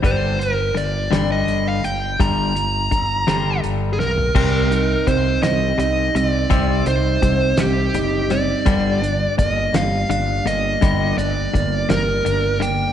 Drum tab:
CC |------------|------------|x-----------|------------|
HH |x-x-x-x-x-x-|x-x-x-x-x---|--x-x-x-x-x-|x-x-x-x-x-x-|
SD |------o-----|------o---o-|------o-----|------o-----|
FT |------------|-----------o|------------|------------|
BD |o-----------|o---o-------|o---o-------|o---o-------|

CC |------------|------------|
HH |x-x-x-x-x-x-|x-x-x-x-x-x-|
SD |------o-----|------o-----|
FT |------------|------------|
BD |o---o-------|o---o-------|